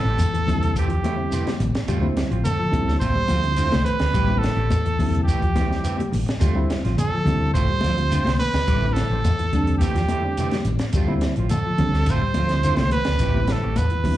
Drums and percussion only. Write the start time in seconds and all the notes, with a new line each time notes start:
0.19 closed hi-hat, high conga, shekere
0.35 closed hi-hat
0.47 kick, closed hi-hat, high conga, low conga, shekere
0.63 closed hi-hat
0.76 kick, closed hi-hat, shekere
0.90 closed hi-hat, low conga
1.04 closed hi-hat, high conga, shekere
1.32 closed hi-hat, shekere
1.47 snare, closed hi-hat, high conga
1.60 closed hi-hat, low conga, shekere
1.75 snare, closed hi-hat
1.88 kick, closed hi-hat, shekere
2.03 high conga
2.17 snare, closed hi-hat, shekere
2.32 closed hi-hat
2.45 closed hi-hat, high conga, shekere
2.73 kick, closed hi-hat, high conga, low conga, shekere
2.88 snare
3.01 kick, closed hi-hat, high conga, shekere
3.15 low conga
3.28 closed hi-hat, high conga, shekere
3.43 closed hi-hat
3.56 closed hi-hat, shekere
3.71 snare, closed hi-hat, high conga
3.85 closed hi-hat, low conga, shekere
3.99 snare, closed hi-hat
4.14 kick, closed hi-hat, shekere
4.27 high conga
4.43 snare, closed hi-hat, shekere
4.70 closed hi-hat, high conga, shekere
4.86 closed hi-hat
4.99 kick, open hi-hat, high conga, low conga, shekere
5.15 closed hi-hat
5.28 kick, closed hi-hat, shekere
5.42 kick, closed hi-hat
5.56 kick, snare, closed hi-hat, high conga, shekere
5.72 snare
5.84 closed hi-hat, shekere
5.98 closed hi-hat, high conga
6.12 open hi-hat, high conga, low conga, shekere
6.28 snare, closed hi-hat
6.41 kick, closed hi-hat, shekere
6.70 snare, closed hi-hat, shekere
6.85 snare, closed hi-hat
6.98 closed hi-hat, high conga, shekere
7.26 kick, closed hi-hat, high conga, low conga, shekere
7.55 kick, closed hi-hat, shekere
7.81 snare, closed hi-hat, high conga, shekere
7.98 closed hi-hat
8.11 closed hi-hat, shekere
8.25 snare, closed hi-hat, high conga
8.39 closed hi-hat, high conga, low conga, shekere
8.54 snare, closed hi-hat
8.67 kick, closed hi-hat, shekere
8.96 snare, closed hi-hat, shekere
9.25 closed hi-hat, high conga, shekere
9.39 closed hi-hat
9.53 kick, closed hi-hat, high conga, low conga, shekere
9.67 closed hi-hat
9.80 kick, closed hi-hat, high conga, shekere
9.95 snare, closed hi-hat, low conga
10.09 closed hi-hat, high conga, shekere
10.37 closed hi-hat, shekere
10.51 snare, closed hi-hat, high conga
10.65 closed hi-hat, low conga, shekere
10.79 snare, closed hi-hat
10.93 kick, closed hi-hat, shekere
11.08 high conga
11.21 snare, closed hi-hat, shekere
11.36 closed hi-hat
11.49 closed hi-hat, high conga, shekere
11.78 kick, closed hi-hat, high conga, low conga, shekere
11.93 snare
12.06 kick, closed hi-hat, shekere
12.34 closed hi-hat, high conga, shekere
12.49 snare, closed hi-hat
12.63 closed hi-hat, shekere
12.76 snare, closed hi-hat, high conga
12.91 closed hi-hat, high conga, low conga, shekere
13.04 snare, closed hi-hat
13.19 kick, closed hi-hat, shekere
13.34 high conga
13.47 snare, closed hi-hat, shekere
13.76 closed hi-hat, high conga, shekere
13.90 closed hi-hat
14.04 kick, open hi-hat, high conga, low conga, shekere